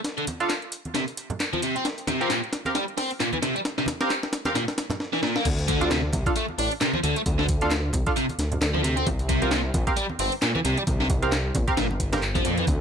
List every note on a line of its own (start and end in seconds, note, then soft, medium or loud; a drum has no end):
0.04 snare medium
0.04 closed hi-hat medium
0.04 closed hi-hat soft
0.18 0.24 D3 medium
0.18 closed hi-hat soft
0.27 closed hi-hat medium
0.27 high conga medium
0.40 0.49 D4 loud
0.40 0.49 F4 medium
0.40 0.49 A4 medium
0.40 0.49 F5 loud
0.40 closed hi-hat soft
0.50 snare medium
0.50 clap loud
0.50 closed hi-hat soft
0.50 closed hi-hat medium
0.62 closed hi-hat soft
0.72 closed hi-hat medium
0.85 closed hi-hat soft
0.85 high conga medium
0.95 1.03 C3 medium
0.95 snare medium
0.95 closed hi-hat medium
0.95 closed hi-hat soft
1.08 closed hi-hat soft
1.17 closed hi-hat medium
1.30 closed hi-hat soft
1.30 low conga medium
1.40 snare medium
1.40 clap loud
1.40 closed hi-hat soft
1.40 closed hi-hat medium
1.53 1.59 F3 medium
1.53 closed hi-hat soft
1.53 high conga medium
1.62 1.74 C3 medium
1.62 closed hi-hat medium
1.76 1.85 C4 medium
1.76 closed hi-hat soft
1.85 snare medium
1.85 closed hi-hat medium
1.85 closed hi-hat soft
1.98 closed hi-hat soft
2.07 2.20 C3 medium
2.07 snare medium
2.07 closed hi-hat medium
2.07 high conga medium
2.21 2.27 F3 medium
2.21 2.30 C4 loud
2.21 2.30 G4 medium
2.21 2.30 A#4 medium
2.21 2.30 F5 loud
2.21 closed hi-hat soft
2.30 2.39 A#2 loud
2.30 snare medium
2.30 clap loud
2.30 closed hi-hat medium
2.30 closed hi-hat soft
2.44 closed hi-hat soft
2.53 snare medium
2.53 closed hi-hat medium
2.65 2.71 C4 medium
2.65 2.71 G4 medium
2.65 2.71 A#4 medium
2.65 2.71 F5 loud
2.65 closed hi-hat soft
2.65 high conga medium
2.75 2.84 G3 medium
2.75 snare medium
2.75 closed hi-hat medium
2.75 closed hi-hat soft
2.88 closed hi-hat soft
2.98 3.10 C4 medium
2.98 snare medium
2.98 closed hi-hat medium
2.98 open hi-hat medium
3.11 closed hi-hat soft
3.20 3.29 A#2 loud
3.20 snare medium
3.20 clap loud
3.20 closed hi-hat medium
3.20 closed hi-hat soft
3.33 3.37 E3 medium
3.33 closed hi-hat soft
3.33 high conga medium
3.42 3.54 C3 medium
3.42 snare medium
3.42 closed hi-hat medium
3.55 3.59 G3 medium
3.55 closed hi-hat soft
3.65 snare medium
3.65 closed hi-hat medium
3.65 closed hi-hat soft
3.78 3.85 C3 medium
3.78 snare medium
3.78 closed hi-hat soft
3.86 snare loud
3.86 closed hi-hat medium
3.86 high conga medium
4.01 4.10 C4 loud
4.01 4.10 G4 medium
4.01 4.10 A#4 medium
4.01 4.10 F5 loud
4.01 snare medium
4.01 closed hi-hat soft
4.10 snare loud
4.10 clap loud
4.10 closed hi-hat soft
4.10 closed hi-hat medium
4.23 snare medium
4.23 closed hi-hat soft
4.33 snare loud
4.33 closed hi-hat medium
4.45 4.52 C4 medium
4.45 4.52 G4 medium
4.45 4.51 A#4 medium
4.45 4.51 F5 loud
4.45 snare medium
4.45 closed hi-hat soft
4.45 high conga medium
4.55 4.64 A#2 medium
4.55 snare loud
4.55 closed hi-hat soft
4.55 closed hi-hat medium
4.68 snare medium
4.68 closed hi-hat soft
4.78 snare loud
4.78 closed hi-hat medium
4.90 snare medium
4.90 closed hi-hat soft
4.90 low conga medium
5.00 snare medium
5.13 5.20 E3 medium
5.13 snare medium
5.23 5.35 A#2 medium
5.23 snare medium
5.36 5.46 A#3 medium
5.36 snare medium
5.45 6.10 D2 loud
5.45 kick loud
5.45 closed hi-hat medium
5.45 closed hi-hat soft
5.45 crash medium
5.45 high conga medium
5.58 closed hi-hat soft
5.68 5.81 D3 medium
5.68 kick medium
5.68 closed hi-hat medium
5.81 5.88 G3 medium
5.81 5.90 D4 medium
5.81 5.90 F4 medium
5.81 5.90 A4 medium
5.81 5.90 F5 loud
5.81 closed hi-hat soft
5.81 high conga medium
5.91 6.00 C3 loud
5.91 snare loud
5.91 clap loud
5.91 closed hi-hat medium
5.91 closed hi-hat soft
6.13 6.24 C2 medium
6.13 kick medium
6.13 closed hi-hat medium
6.13 high conga loud
6.26 6.32 D4 medium
6.26 6.32 F4 medium
6.26 6.32 A4 medium
6.26 6.32 F5 loud
6.26 kick loud
6.26 closed hi-hat soft
6.36 6.44 A3 medium
6.36 closed hi-hat medium
6.36 closed hi-hat soft
6.49 high conga medium
6.58 6.69 A1 loud
6.58 6.71 D4 medium
6.58 closed hi-hat medium
6.58 open hi-hat medium
6.71 closed hi-hat soft
6.81 6.90 C3 loud
6.81 snare loud
6.81 clap loud
6.81 closed hi-hat medium
6.81 closed hi-hat soft
6.94 6.98 F3 medium
6.94 high conga medium
7.04 7.14 D2 medium
7.04 7.15 D3 medium
7.04 closed hi-hat medium
7.16 7.20 A3 medium
7.16 closed hi-hat soft
7.26 7.91 D2 loud
7.26 kick loud
7.26 closed hi-hat medium
7.26 closed hi-hat soft
7.26 high conga medium
7.39 7.46 D3 medium
7.39 snare medium
7.49 kick loud
7.49 closed hi-hat medium
7.61 7.71 D4 loud
7.61 7.71 F4 medium
7.61 7.71 A4 medium
7.61 7.71 F5 loud
7.61 closed hi-hat soft
7.61 high conga medium
7.71 snare loud
7.71 clap loud
7.71 closed hi-hat soft
7.71 closed hi-hat medium
7.93 8.04 C2 loud
7.93 kick medium
7.93 closed hi-hat medium
7.93 high conga loud
8.06 8.12 D4 medium
8.06 8.12 F4 medium
8.06 8.12 A4 medium
8.06 8.12 F5 loud
8.06 kick loud
8.06 closed hi-hat soft
8.16 8.25 C3 medium
8.16 closed hi-hat soft
8.16 closed hi-hat medium
8.29 closed hi-hat soft
8.29 high conga medium
8.39 8.57 D2 medium
8.39 snare soft
8.39 closed hi-hat medium
8.52 closed hi-hat soft
8.52 low conga medium
8.61 9.03 D2 medium
8.61 snare loud
8.61 clap loud
8.61 closed hi-hat medium
8.61 closed hi-hat soft
8.74 8.81 F3 medium
8.74 high conga medium
8.84 8.96 C3 medium
8.84 closed hi-hat medium
8.97 9.07 C4 medium
8.97 closed hi-hat soft
9.06 9.71 C2 loud
9.06 kick loud
9.06 closed hi-hat soft
9.06 closed hi-hat medium
9.06 high conga loud
9.19 closed hi-hat soft
9.29 9.42 C3 medium
9.29 kick loud
9.29 closed hi-hat medium
9.42 9.48 F3 medium
9.42 9.51 C4 loud
9.42 9.51 G4 medium
9.42 9.51 A#4 medium
9.42 9.51 F5 loud
9.42 closed hi-hat soft
9.42 high conga medium
9.51 9.60 A#2 loud
9.51 snare loud
9.51 clap loud
9.51 closed hi-hat medium
9.51 closed hi-hat soft
9.74 9.84 A#1 loud
9.74 kick loud
9.74 closed hi-hat medium
9.74 high conga loud
9.87 9.93 C4 medium
9.87 9.93 G4 medium
9.87 9.93 A#4 medium
9.87 9.93 F5 loud
9.87 kick loud
9.87 closed hi-hat soft
9.97 10.05 G3 medium
9.97 closed hi-hat soft
9.97 closed hi-hat medium
10.10 high conga medium
10.19 10.30 G1 loud
10.19 10.32 C4 medium
10.19 closed hi-hat medium
10.19 open hi-hat medium
10.32 closed hi-hat soft
10.42 10.51 A#2 loud
10.42 snare loud
10.42 clap loud
10.42 closed hi-hat medium
10.42 closed hi-hat soft
10.55 10.59 E3 medium
10.55 high conga medium
10.64 10.75 C2 medium
10.64 10.76 C3 medium
10.64 closed hi-hat medium
10.77 10.82 G3 medium
10.77 closed hi-hat soft
10.87 11.52 C2 loud
10.87 kick loud
10.87 closed hi-hat soft
10.87 closed hi-hat medium
10.87 high conga medium
11.00 11.07 C3 medium
11.00 snare medium
11.10 kick loud
11.10 closed hi-hat medium
11.10 low conga medium
11.22 11.32 C4 loud
11.22 11.32 G4 medium
11.22 11.32 A#4 medium
11.22 11.32 F5 loud
11.22 closed hi-hat soft
11.22 high conga medium
11.32 snare loud
11.32 clap loud
11.32 closed hi-hat medium
11.32 closed hi-hat soft
11.55 11.65 A#1 loud
11.55 kick loud
11.55 closed hi-hat medium
11.55 high conga loud
11.67 11.73 C4 loud
11.67 11.73 G4 medium
11.67 11.73 A#4 medium
11.67 11.73 F5 loud
11.67 kick loud
11.67 closed hi-hat soft
11.77 12.42 G1 loud
11.77 11.86 A#2 medium
11.77 snare loud
11.77 closed hi-hat medium
11.77 closed hi-hat soft
11.91 high conga medium
12.00 kick medium
12.00 closed hi-hat medium
12.13 12.18 C4 loud
12.13 12.18 G4 medium
12.13 12.18 A#4 medium
12.13 12.18 F5 loud
12.13 snare loud
12.13 closed hi-hat soft
12.13 closed hi-hat medium
12.13 low conga medium
12.22 clap loud
12.22 closed hi-hat soft
12.35 12.44 F3 medium
12.35 kick medium
12.35 closed hi-hat medium
12.35 high conga loud
12.45 12.63 F2 medium
12.45 12.57 A#2 medium
12.45 closed hi-hat medium
12.58 12.64 E3 loud
12.58 closed hi-hat soft
12.67 12.81 D2 loud
12.67 kick loud
12.67 closed hi-hat soft
12.67 closed hi-hat medium
12.67 high conga loud